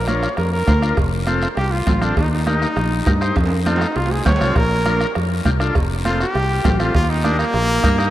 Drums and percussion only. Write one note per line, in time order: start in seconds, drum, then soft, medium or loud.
0.07 bombo rim medium
0.07 high conga medium
0.07 short guiro medium
0.23 bombo rim medium
0.23 short guiro medium
0.37 bombo rim medium
0.37 cowbell medium
0.37 high conga soft
0.37 long guiro medium
0.68 bombo low medium
0.68 bombo rim medium
0.68 high conga medium
0.68 low timbale medium
0.68 short guiro medium
0.82 bombo rim medium
0.82 short guiro medium
0.97 bombo low medium
0.97 bombo rim medium
0.97 cowbell loud
0.97 high conga soft
0.97 long guiro medium
1.27 bombo rim medium
1.27 high conga medium
1.27 short guiro medium
1.42 bombo rim medium
1.42 short guiro medium
1.57 bombo rim medium
1.57 cowbell medium
1.57 high conga soft
1.57 long guiro medium
1.87 bombo low medium
1.87 bombo rim medium
1.87 high conga medium
1.87 low conga medium
1.87 low timbale medium
1.87 short guiro medium
2.02 bombo rim medium
2.02 low conga medium
2.02 short guiro medium
2.17 bombo low medium
2.17 bombo rim medium
2.17 cowbell loud
2.17 high conga soft
2.17 long guiro medium
2.47 bombo rim medium
2.47 high conga medium
2.47 short guiro medium
2.62 bombo rim medium
2.62 short guiro medium
2.76 bombo rim medium
2.76 cowbell medium
2.76 long guiro medium
3.06 bombo low medium
3.06 bombo rim medium
3.06 high conga medium
3.06 low timbale medium
3.06 short guiro medium
3.21 bombo rim medium
3.21 short guiro medium
3.36 bombo low medium
3.36 bombo rim medium
3.36 cowbell loud
3.36 high conga soft
3.36 high timbale medium
3.36 long guiro medium
3.46 high timbale medium
3.66 bombo rim medium
3.66 high conga medium
3.66 short guiro medium
3.76 low timbale medium
3.81 bombo rim medium
3.81 short guiro medium
3.96 bombo rim medium
3.96 cowbell medium
3.96 high conga soft
3.96 long guiro medium
4.06 low timbale medium
4.26 bombo low medium
4.26 bombo rim medium
4.26 high conga medium
4.26 low conga medium
4.26 low timbale medium
4.26 short guiro medium
4.36 low timbale medium
4.41 bombo rim medium
4.41 short guiro medium
4.46 low timbale medium
4.56 bombo low medium
4.56 bombo rim medium
4.56 cowbell loud
4.56 high conga soft
4.56 long guiro medium
4.86 bombo rim medium
4.86 high conga medium
4.86 short guiro medium
5.01 bombo rim medium
5.01 short guiro medium
5.15 bombo rim medium
5.15 cowbell medium
5.15 high conga soft
5.15 long guiro medium
5.45 bombo low medium
5.45 bombo rim medium
5.45 high conga medium
5.45 short guiro medium
5.60 bombo rim medium
5.60 short guiro medium
5.75 bombo low medium
5.75 bombo rim medium
5.75 cowbell loud
5.75 high conga soft
5.75 long guiro medium
6.05 bombo rim medium
6.05 high conga medium
6.05 short guiro medium
6.20 bombo rim medium
6.20 short guiro medium
6.35 bombo rim medium
6.35 cowbell medium
6.35 high conga soft
6.35 long guiro medium
6.64 bombo low medium
6.64 bombo rim medium
6.64 high conga medium
6.64 low conga medium
6.64 low timbale medium
6.64 short guiro medium
6.80 bombo rim medium
6.80 short guiro medium
6.94 bombo low medium
6.94 bombo rim medium
6.94 cowbell loud
6.94 high conga soft
6.94 long guiro medium
7.24 bombo rim medium
7.24 high conga medium
7.24 short guiro medium
7.39 bombo rim medium
7.39 short guiro medium
7.54 bombo rim medium
7.54 cowbell medium
7.54 high conga soft
7.54 long guiro medium
7.84 bombo low medium
7.84 bombo rim medium
7.84 high conga medium
7.84 short guiro medium
7.99 bombo rim medium
7.99 short guiro medium